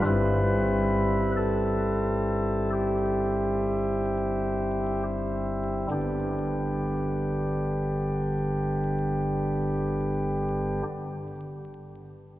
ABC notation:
X:1
M:4/4
L:1/8
Q:1/4=37
K:G
V:1 name="Pipe organ"
B2 A2 G3 z | [G,,D,B,DG]8 |]
V:2 name="Pipe organ" clef=bass
[G,,,G,,G,CE]8 | G,,,8 |]